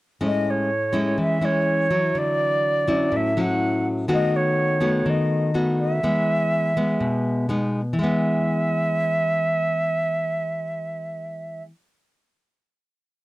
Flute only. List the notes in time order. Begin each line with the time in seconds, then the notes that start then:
0.26 D#5
0.50 C#5
1.20 E5
1.45 C#5
2.18 D5
3.16 E5
3.41 F#5
4.13 D#5
4.36 C#5
5.09 D#5
5.80 E5
7.99 E5